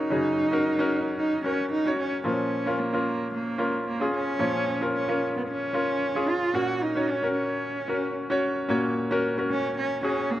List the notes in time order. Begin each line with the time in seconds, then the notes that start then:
Already playing: C#4 D#4 F#4 G#4 A#4
0.10 F#2 C#3 C#4 F#4 G#4
0.51 C#4 F#4 A#4
0.79 C#4 F#4 A#4
1.18 D#4
1.44 C#4 F#4 A#4
1.72 D#4
1.86 C#4 F#4 C#5
1.99 C#4
2.24 A#2 F3 C#4 F4 A#4
2.66 C#4 F4 A#4
2.79 A#3
2.93 C#4 F4 A#4
3.34 A#3
3.58 C#4 F4 A#4
3.88 A#3
4.00 C#4 F4 G#4
4.15 C#4
4.39 A#2 F3 C#4 F4 C#5
4.81 C#4 F4 A#4
4.95 C#4
5.08 C#4 F4 A#4
5.37 B3
5.48 C#4
5.73 C#4 F4 A#4
6.15 C#4 F4 G#4
6.29 F4
6.54 A#2 A#3 C#4 F#4 A#4
6.82 D#4
6.95 C#4 F#4 C#5
7.10 C#4
7.22 C#4 F#4 A#4
7.36 C#4
7.88 C#4 F#4 A#4
8.30 C#4 F#4 C#5
8.69 A#2 A#3 C#4 F#4 C#5
9.11 C#4 F#4 A#4
9.38 C#4 F#4 A#4
9.51 C#4
9.78 C#4
10.03 C#4 F#4 G#4
10.31 A#3